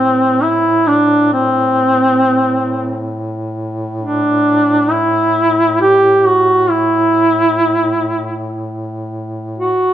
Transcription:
Already playing: A2 C4
0.43 E4
0.87 D4
1.33 C4
4.02 D4
4.91 E4
5.81 G4
6.26 F#4
6.70 E4
9.58 F#4

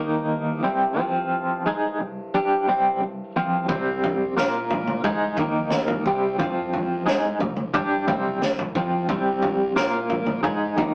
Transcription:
Already playing: C2 G2 D#3 A#3 D#4
0.63 C3 G3 C4
0.98 F3 C4 F4
1.66 G#3 D#4 G#4
2.01 C3 G3
2.34 G3 D4 G4
2.68 C3 G3 C4
3.02 C3 G3
3.36 F3 C4 F4
3.68 C2 C3 G3 C4, kick, floor tom
4.03 floor tom, high conga
4.37 A#2 A#3 F4 A#4, snare
4.70 floor tom, low conga
4.87 mid tom, high conga
5.04 G#2 G#3 D#4 G#4, kick, floor tom
5.23 low conga
5.37 D#2 D#3 A#3 D#4, kick, floor tom
5.56 high conga
5.70 snare, mid tom
5.88 floor tom
6.06 C2 C3 G3 C4, kick, low conga
6.39 F2 F3 C4 F4, kick, floor tom
6.73 floor tom, high conga
7.06 G#2 G#3 D#4 G#4, snare
7.40 C2 C3 G3, floor tom, mid tom, low conga
7.56 mid tom, high conga
7.74 G2 G3 D4 G4, kick, floor tom
7.92 low conga
8.07 C2 C3 G3 C4, kick, floor tom, mid tom
8.25 high conga
8.41 C2 C3 G3, snare, mid tom
8.59 floor tom
8.75 F2 F3 C4 F4, kick, low conga
9.08 C2 C3 G3 C4, kick, floor tom
9.42 floor tom, high conga
9.76 A#2 A#3 F4 A#4, snare
10.10 floor tom, low conga
10.26 mid tom, high conga
10.43 G#2 G#3 D#4 G#4, kick, floor tom
10.77 D#2 D#3 A#3 D#4, kick, floor tom

